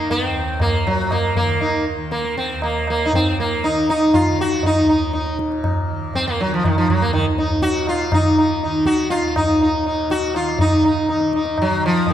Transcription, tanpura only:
0.00 0.27 D#2 medium
0.00 0.83 A#2 medium
0.00 1.39 D#3 medium
0.27 2.52 D#2 medium
0.83 3.09 A#2 medium
1.39 1.96 D#3 medium
1.96 3.65 D#3 medium
2.53 4.77 D#2 medium
3.10 5.32 A#2 medium
3.65 4.21 D#3 medium
4.21 5.88 D#3 medium
4.77 6.99 D#2 medium
5.33 7.55 A#2 medium
5.88 6.45 D#3 medium
6.45 8.10 D#3 medium
7.00 9.19 D#2 medium
7.55 9.75 A#2 medium
8.10 8.65 D#3 medium
8.65 10.32 D#3 medium
9.20 12.13 D#2 medium
9.76 12.13 A#2 medium
10.32 11.13 D#3 medium
11.13 11.68 D#3 medium
11.68 12.13 D#3 medium

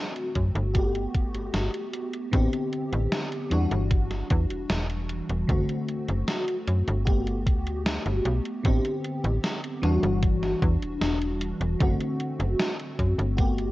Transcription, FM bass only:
0.36 0.51 F#2 medium
0.55 1.07 G1 loud
1.34 1.50 G1 soft
1.54 1.69 G1 medium
2.33 2.48 A1 loud
2.92 3.08 A1 loud
3.52 3.67 E2 medium
3.71 4.23 G1 loud
4.31 4.46 E2 loud
4.50 4.66 E1 soft
4.70 5.22 E1 medium
5.30 5.45 E1 medium
5.49 5.64 F#1 loud
6.09 6.24 F#1 medium
6.68 6.83 F#2 medium
6.88 7.48 G1 loud
7.47 7.99 D2 medium
8.06 8.21 G1 medium
8.25 8.41 B1 loud
8.65 8.80 A1 loud
9.24 9.39 A1 loud
9.83 9.98 E2 medium
10.03 10.55 G1 loud
10.62 10.77 E2 loud
10.82 10.98 E1 soft
11.01 11.53 E1 medium
11.61 11.76 E1 medium
11.80 11.96 F#1 loud
12.40 12.55 F#1 loud
12.99 13.14 F#2 medium
13.18 13.70 G1 loud

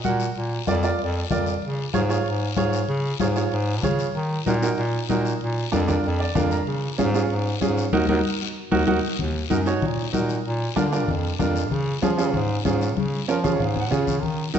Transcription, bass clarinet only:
0.04 0.30 A#2 medium
0.36 0.61 A#2 medium
0.68 0.93 F2 loud
0.99 1.24 F2 loud
1.31 1.56 F2 medium
1.62 1.88 C#3 medium
1.94 2.19 G#2 loud
2.26 2.51 G#2 medium
2.57 2.82 G#2 medium
2.89 3.14 C#3 medium
3.20 3.46 G#2 medium
3.52 3.85 G#2 loud
3.84 4.09 C#3 medium
4.15 4.40 D#3 medium
4.46 4.72 A#2 loud
4.78 5.03 A#2 loud
5.09 5.35 A#2 medium
5.41 5.66 A#2 medium
5.72 5.98 F2 loud
6.04 6.29 F2 loud
6.35 6.61 F2 medium
6.67 6.92 C#3 medium
6.99 7.24 G#2 loud
7.30 7.55 G#2 loud
7.61 7.87 G#2 medium
7.93 8.05 D#2 loud
8.09 8.20 D#2 loud
8.72 8.83 D#2 loud
8.88 8.99 D#2 medium
9.19 9.44 D#2 medium
9.51 9.84 F#2 medium
9.82 10.07 A#2 medium
10.13 10.39 A#2 medium
10.45 10.70 A#2 medium
10.77 11.10 D3 medium
11.08 11.33 F2 medium
11.40 11.73 F2 medium
11.71 11.96 C#3 medium
12.03 12.36 F3 medium
12.34 12.60 G#2 loud
12.66 12.99 G#2 medium
12.97 13.22 C#3 medium
13.29 13.62 F3 medium
13.60 13.94 G#2 loud
13.92 14.25 C#3 medium
14.23 14.48 D#3 medium
14.55 14.59 F#3 medium

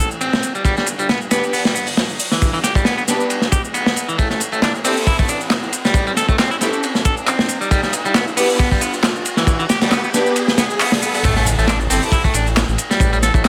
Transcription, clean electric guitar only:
0.21 0.54 C4 medium
0.55 0.63 G3 medium
0.65 0.74 G3 loud
0.78 0.87 G3 medium
0.99 1.07 G3 loud
1.09 1.19 B3 medium
1.31 1.43 B3 loud
1.53 1.62 B3 loud
1.65 1.75 G3 medium
1.75 1.87 B3 medium
2.32 2.52 E3 medium
2.53 2.58 E3 loud
2.64 2.73 G4 medium
2.75 2.85 G3 medium
2.85 2.96 B3 medium
2.97 3.02 B3 medium
3.52 3.61 G4 medium
3.74 4.07 B3 medium
4.09 4.16 E3 medium
4.18 4.27 A3 loud
4.31 4.40 A3 medium
4.52 4.60 A3 loud
4.63 4.72 D4 medium
4.85 4.96 C4 loud
5.07 5.16 E4 loud
5.19 5.28 A3 medium
5.29 5.40 D4 medium
5.85 6.06 G3 loud
6.07 6.11 G3 loud
6.17 6.26 A4 medium
6.29 6.38 A3 medium
6.38 6.50 C4 medium
6.51 6.56 E4 medium
7.05 7.14 A4 medium
7.27 7.60 C4 medium
7.61 7.69 G3 medium
7.71 7.80 G3 loud
7.83 7.93 G3 medium
8.05 8.13 G3 loud
8.15 8.24 B3 medium
8.37 8.49 B3 loud
8.59 8.68 B3 loud
8.71 8.81 G3 medium
8.82 8.93 B3 medium
9.37 9.58 E3 loud
9.59 9.64 E3 loud
9.70 9.79 G4 medium
9.82 9.91 G3 medium
9.92 10.03 B3 medium
10.04 10.09 B3 medium
10.58 10.64 B3 medium
10.80 10.92 B3 loud
11.03 11.13 B3 medium
11.15 11.24 B3 medium
11.25 11.34 A3 loud
11.36 11.46 A3 medium
11.59 11.66 A3 loud
11.68 11.77 D4 medium
11.90 12.02 C4 loud
12.13 12.22 E4 loud
12.24 12.34 A3 medium
12.35 12.46 D4 medium
12.91 13.12 G3 loud
13.13 13.17 G3 loud
13.23 13.32 A4 medium
13.35 13.44 A3 medium
13.45 13.48 C4 medium

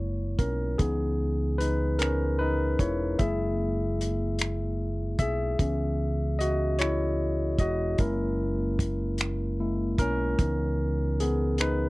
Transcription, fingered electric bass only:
0.00 0.35 F#1 medium
0.39 0.75 B1 medium
0.80 2.75 C#2 medium
2.80 3.15 E1 medium
3.20 5.15 F#1 medium
5.19 5.55 B1 medium
5.60 7.55 C#2 medium
7.59 7.95 E1 medium
7.99 9.95 F#1 medium
9.99 10.35 B1 medium
10.40 11.89 C#2 medium

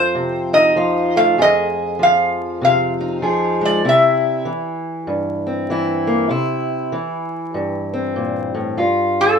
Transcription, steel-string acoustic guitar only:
0.00 1.36 F2 medium
0.00 0.75 F3 medium
0.00 0.53 C4 medium
0.00 0.76 F4 medium
0.15 0.77 C3 medium
0.53 1.36 D#4 medium
0.76 1.36 F3 medium
0.76 1.36 F4 medium
1.16 1.36 A3 medium
1.38 3.82 F2 medium
1.38 3.22 G#4 medium
1.99 3.21 F3 medium
2.61 3.24 C3 medium
3.01 3.83 D#4 medium
3.22 3.82 F3 medium
3.22 3.82 G#4 medium
3.61 3.82 G#3 medium
3.85 4.47 C3 medium
3.85 5.70 E4 medium
4.45 5.69 E3 medium
5.07 6.28 G2 medium
5.46 6.29 C4 medium
5.70 6.29 E3 medium
5.70 6.29 E4 medium
6.07 6.28 A#3 medium
6.29 6.92 C3 medium
6.29 8.77 E4 medium
6.92 8.75 E3 medium
7.54 8.75 G2 medium
7.94 8.76 C4 medium
8.16 8.54 A#2 medium
8.54 8.78 A2 medium
8.77 9.39 G2 medium
8.77 9.39 F4 medium

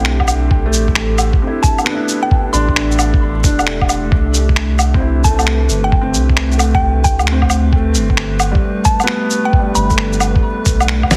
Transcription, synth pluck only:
0.00 0.47 G5 medium
1.63 2.00 A5 medium
2.23 2.46 G5 medium
2.53 2.91 C6 medium
5.24 5.62 A5 medium
5.84 6.07 G5 medium
6.75 6.98 G5 medium
7.04 7.69 G5 medium
8.85 9.22 A5 medium
9.45 9.69 G5 medium
9.75 10.13 B5 medium

